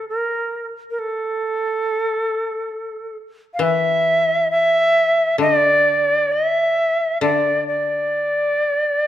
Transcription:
Already playing: D3
0.09 A#4
0.90 A#4
0.99 A4
3.54 F5
3.59 E3 E5
4.51 E5
5.38 D3 D5
6.32 E5
7.21 D3 D5
7.68 D5

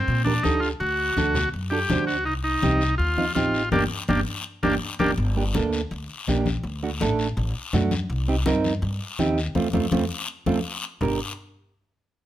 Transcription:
Already playing: C4
0.08 A#2, long guiro
0.24 D4 G4 A#4, high conga
0.43 D2 D4 D#4 G4 A4, high conga, short guiro
0.60 F4, short guiro
0.80 D2 F#4, long guiro
1.17 D2 D4 F#4 A4, high conga, short guiro
1.35 low conga, short guiro
1.53 F#2, long guiro
1.70 D4 F#4 G4 A4
1.90 D2 D4 F#4 C5, high conga, low conga, short guiro
2.07 F#4, short guiro
2.26 C2 D#4, long guiro
2.44 D#4
2.62 C2 C4 D#4 G4, high conga, short guiro
2.81 short guiro
2.98 D#2 F4, long guiro
3.18 C4 D#4 F4, high conga
3.35 A1 C4 D#4 F4 G4, high conga, short guiro
3.54 short guiro
3.72 G1 A#3 D4 G4, high conga, long guiro
4.08 G1 A#3 D4 G4, high conga, long guiro
4.63 G1 A#3 D4 G4, high conga, long guiro
4.99 G1 A#3 D4 G4, high conga, long guiro
5.17 G1, long guiro
5.36 A#3 D4 G4, high conga
5.54 D2 A#3 D4 A4, high conga, short guiro
5.73 short guiro
5.91 D2, high conga, long guiro
6.27 A#1 A#3 D4 G4, high conga, short guiro
6.46 high conga, short guiro
6.63 D2, long guiro
6.83 A3 D4 F#4, high conga
7.00 A1 A3 D4 A4, high conga, short guiro
7.19 short guiro
7.37 A1, high conga, long guiro
7.73 F#2 A3 D4 F#4, high conga, low conga, short guiro
7.91 high conga, short guiro
8.10 C2, long guiro
8.28 C4 D#4 G4, high conga
8.46 G2 C4 D#4 A#4, high conga, short guiro
8.64 high conga, short guiro
8.82 G2, high conga, long guiro
9.19 D#2 C4 D#4 G4, high conga, short guiro
9.38 short guiro
9.55 F2 A3 C4 F4, high conga, long guiro
9.73 F2 A3 C4 F4, high conga, long guiro
9.92 F2 A3 C4 F4, high conga, long guiro
10.46 F2 A3 C4 F4, high conga, long guiro
11.01 G1 D4 G4 A#4, low conga, long guiro

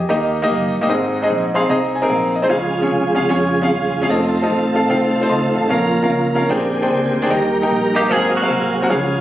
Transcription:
0.09 D#2 D#3 A#3 D#4 G4 D#5
0.42 A#3 D#4 G4 D#5
0.50 F#1
0.76 G1
0.81 A#3 D#4 G4 D#5
0.89 G#1 G#2 C4 D#4 G#4 D#5
1.22 C4 D#4 G#4 D#5
1.30 A#1
1.54 C4 D#4 G#4 F5 C6
1.69 C2 C4 D#4 G#4 D#5 A#5
1.95 G#5
2.02 C4 D#4 G#4 A#4
2.09 A#1 F5
2.36 D#5
2.42 C4 D#4 G#4 C5
2.49 C#2 C#3 F3 G#3 C#4 F4 G#4 F5
2.82 C#4 F4 G#4 C#5
2.90 C2
3.15 C#2 C#4 F4 G#4 F5
3.29 F2 C#4 F4 G#4 C#5
3.62 C#4 F4 G#4 F5
3.69 D#1
3.96 E1
4.02 C#4 F4 G#4 F5
4.09 F1 D#3 A3 C4 F4 A4 D#5
4.42 C4 F4 A4 D#5
4.50 A1
4.74 C4 F4 A4 F5 A5
4.89 C2 C4 F4 A4 F5 G5
5.16 F5
5.21 C4 F4 A4 C5
5.29 C#2 D#5 C6
5.55 A1 A4 F5
5.69 A#1 A#2 C#3 F3 A#3 C#4 F4 A#4 F5
6.02 C#4 F4 A#4 F5
6.10 C#2
6.35 C#4 F4 A#4 F5
6.49 A#1 A#2 D3 C4 D4 G4 G#4 C5 G5
6.82 D4 G#4 C5 G5
6.90 C#2
7.16 D2
7.22 D4 G#4 C5 G5
7.30 D#2 D#3 G3 A#3 D#4 G4 A#4 G5
7.62 D#4 G4 A#4 G5
7.71 A#1
7.95 D#4 G4 A#4 F5
8.09 G#1 G#2 F#3 C4 F#4 G#4 A#4 F5
8.37 F#4
8.42 C4 F#4 A#4 F5
8.51 C2
8.82 C4 F#4 A#4 F#5
8.89 C#2 C#3 F3 G#3 C#4 F4 G#4 F5

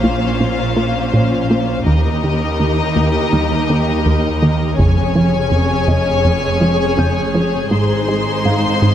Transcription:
Already playing: A#1 A#2 C#4 F4 C5 F5
0.03 A#2 A#3, taiko
0.40 A#2 C#4
0.76 A#3 F4
1.13 A#2 A#3 C#4 C5
1.50 A#3 F4
1.86 D#2 D#3 D#4 G4 A#4 D#5
2.24 D#3
2.60 D#2
2.96 D#2 D#3
3.33 D#2 G3
3.70 D#3 A#3
4.06 D#2 D#3
4.42 D#3 A#3
4.78 F1 F2 C#3 C#4 G#4 C#5 G#5, taiko
5.15 F3
5.52 F2
5.88 F2 C#3 D#5
6.25 F2 F3
6.61 F3 G#3
6.98 F2 C#3 G6
7.35 F3 G#3
7.71 G#1 G#2 G#3 D#4 C5 C6
8.08 G#3
8.45 G#2 F5
8.82 G#2 G#3

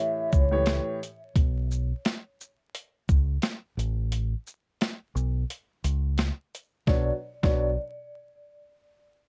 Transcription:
Already playing: A2 E3 G4 C#5 E5
0.30 C#2 C#5, kick, shaker
0.51 A2 E3 G4 C#5
0.66 snare, closed hi-hat
1.03 closed hi-hat, shaker
1.36 B1, kick, closed hi-hat
1.71 shaker
2.05 snare, closed hi-hat
2.41 shaker
2.75 closed hi-hat
3.09 C#2, kick, shaker
3.42 snare, closed hi-hat
3.77 A1, closed hi-hat, shaker
4.12 closed hi-hat
4.47 shaker
4.81 snare, closed hi-hat
5.15 B1, shaker
5.50 closed hi-hat
5.84 C#2, closed hi-hat, shaker
6.18 snare, closed hi-hat
6.55 closed hi-hat, shaker
6.87 B1 B2 F#3 D4 C#5 D5, kick, snare
7.43 B1 B2 F#3 D4 C#5 D5, kick, snare

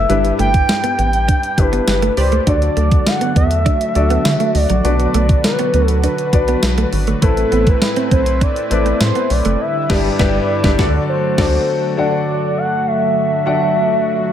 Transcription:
Already playing: C4 E4 A4 B4 E5
0.09 G1 G2 G3 D4 E4 G4 B4, closed hi-hat
0.24 muted clean electric guitar stroke, closed hi-hat
0.39 G1 A3 G5, closed hi-hat
0.54 kick, closed hi-hat
0.69 muted clean electric guitar stroke, snare, closed hi-hat, tambourine
0.84 B3, closed hi-hat
0.98 A1 B3, closed hi-hat
1.13 closed hi-hat
1.28 D4, kick, closed hi-hat
1.43 closed hi-hat
1.57 G1 D4 E4 G4 B4, muted clean electric guitar stroke, kick, closed hi-hat
1.73 B3, closed hi-hat
1.88 G1 E4 G4 B4, snare, closed hi-hat, tambourine
2.02 A3, closed hi-hat
2.17 C#2 G4 B4 C5 D5, muted clean electric guitar stroke, open hi-hat
2.32 A3, closed hi-hat
2.46 D2 D3 F#3 A3 D4 F#4 A4 D5, kick, closed hi-hat
2.62 muted clean electric guitar stroke, closed hi-hat
2.77 D2 A3, closed hi-hat
2.91 kick, closed hi-hat
3.07 F#5, muted clean electric guitar stroke, snare, closed hi-hat, tambourine
3.21 B3, closed hi-hat
3.36 E2 B3 E5, kick, closed hi-hat
3.51 closed hi-hat
3.66 D4, kick, closed hi-hat
3.81 closed hi-hat
3.95 D2 D4 F#4 A4 D5, muted clean electric guitar stroke, closed hi-hat
4.10 B3, closed hi-hat
4.25 D3, snare, closed hi-hat, tambourine
4.40 A3, closed hi-hat
4.55 D2 D5, muted clean electric guitar stroke, open hi-hat
4.70 A#1 F#3, closed hi-hat
4.84 B1 B2 D3 B3 D4 F#4 B4 D5, closed hi-hat
5.00 muted clean electric guitar stroke, closed hi-hat
5.14 B1 A3, closed hi-hat
5.29 kick, closed hi-hat
5.44 B4, muted clean electric guitar stroke, snare, closed hi-hat, tambourine
5.59 B3, closed hi-hat
5.74 D2 B3, closed hi-hat
5.88 A4, closed hi-hat
6.04 D4 B4, closed hi-hat
6.18 closed hi-hat
6.33 B1 D4 F#4 B4 D5, muted clean electric guitar stroke, kick, closed hi-hat
6.48 B3, closed hi-hat
6.63 B1, snare, closed hi-hat, tambourine
6.78 A3, closed hi-hat
6.93 G#1, muted clean electric guitar stroke, open hi-hat
7.07 A3, closed hi-hat
7.22 A1 A2 A3 C4 E4 A4 B4, kick, closed hi-hat
7.37 muted clean electric guitar stroke, closed hi-hat
7.52 A1 B3, closed hi-hat
7.67 B4, kick, closed hi-hat
7.82 muted clean electric guitar stroke, snare, closed hi-hat, tambourine
7.96 C4, closed hi-hat
8.11 B1 C4 C5, kick, closed hi-hat
8.26 closed hi-hat
8.41 D4 D5, kick, closed hi-hat
8.56 closed hi-hat
8.70 A1 C4 E4 A4 B4 D5, muted clean electric guitar stroke, closed hi-hat
8.86 C4, closed hi-hat
9.00 A2 C5, snare, closed hi-hat, tambourine
9.15 B3, closed hi-hat
9.30 B1 D5, muted clean electric guitar stroke, open hi-hat
9.45 F#1 A3, closed hi-hat
9.60 D3 G3 E4 E5
9.89 G1 G2 D4 E4 G4 B4 D5, kick, snare, crash
10.19 G1 G2 D4 E4 G4 B4 D5, kick, snare
10.63 G1 G2 D4 E4 G4 B4 D5, kick, snare
10.78 D2 D3 F#3 A3 D4 F#4 A4 D5, kick, snare
11.09 C5
11.38 D2 D4 F#4 A4 D5, kick, snare, crash
11.97 D3 F#3 A3 D4 F#4 A4 D5 F#5
12.57 F#5
12.87 E5
13.46 D4 F#4 A4 D5 F#5

